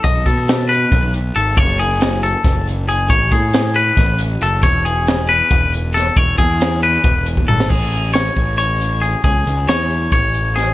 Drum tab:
CC |--------------|--------------|--------------|--------------|
HH |x-x-x-x-x-x-x-|x-x-x-x-x-x-x-|x-x-x-x-x-x-x-|x-x-x-x-x-x-x-|
SD |----o---------|----o---o-----|----o---o-----|----o-------o-|
T2 |--------------|--------------|--------------|--------------|
BD |o-o-----o-----|o-------o-----|o-o-----o-----|o-------o-----|

CC |--------------|x-------------|--------------|
HH |x-x-x-x-x-x---|--x-x-x-x-x-x-|x-x-x-x-x-x-x-|
SD |----o--------o|----o---------|----o-------o-|
T2 |------------o-|--------------|--------------|
BD |o-o-----o--o--|o-----o-------|o-------o-----|